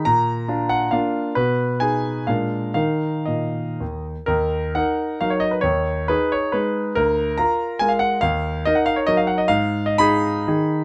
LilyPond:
\new Staff \with { instrumentName = "Grand piano" } { \time 3/4 \key ees \minor \tempo 4 = 136 << { bes''4. ges''8 f''4 | ces''4 aes''4 f''4 | f''4 ees''4. r8 | bes'4 ges''4 f''16 des''16 ees''16 ces''16 |
des''4 ces''8 des''8 ces''4 | bes'4 bes''4 aes''16 f''16 ges''8 | f''4 ees''16 ges''16 f''16 des''16 ees''16 f''16 ges''16 ees''16 | f''8. ees''16 ces'''2 | } \\ { bes,4 <d' f'>4 <bes d' f'>4 | ces4 <ees' aes'>4 <bes, aes d' bes'>4 | <ees ees' bes'>4 bes,4 ees,4 | ees,4 <ees' bes'>4 <ges ees' bes'>4 |
ees,4 <ees' aes'>4 <aes ees' aes'>4 | d,4 <f' bes'>4 <aes f' bes'>4 | ees,4 <ees' bes'>4 <ges ees' bes'>4 | aes,4 <ees' aes'>4 <ees ees' aes'>4 | } >> }